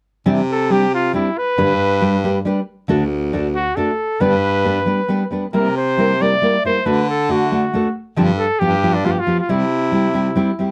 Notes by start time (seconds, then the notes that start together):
0.26 C3 E3 G3 C4 D4 G4
0.51 A4
0.70 G3 C4 D4 G4
0.94 F4
1.13 G3 C4 D4 E4 G4
1.38 B4
1.58 G2 D3 G3 D4 G4 B4
2.01 G3 D4 G4 B4
2.24 G3 D4 G4 B4
2.45 G3 D4 G4 B4
2.88 D2 D3 A3 D4 F#4 A4
3.33 A3 D4 F#4 A4
3.55 F#4
3.76 A3 D4 F#4 A4
4.20 G2 D3 G3 B3 D4 B4
4.65 G3 B3 D4 B4
4.86 G3 B3 D4 B4
5.08 G3 B3 D4 B4
5.31 G3 B3 D4 B4
5.53 C3 G3 A#3 E4 A#4
5.77 C5
5.97 G3 A#3 E4 A#4
6.20 G3 A#3 E4 A#4 D5
6.42 G3 A#3 E4 A#4
6.64 G3 A#3 E4 A#4 C5
6.85 D3 A3 D4 F#4 A4 B4
7.10 A4
7.29 A3 D4 F#4 A4
7.51 A3 D4 F#4 A4
7.73 A3 D4 F#4 A4
8.16 G2 D3 F3 C4 D4 G4
8.38 A4
8.59 G2 F3 B3 F4 G4
8.83 F3 B3 F4 G4
8.94 D4
9.04 F3 B3 F4 G4
9.11 G4
9.19 F4
9.27 F3 B3 F4 G4
9.40 F4
9.49 C3 G3 C4 E4 G4
9.92 G3 C4 E4 G4
10.14 G3 C4 E4 G4
10.36 G3 C4 E4 G4
10.59 G3 C4 E4 G4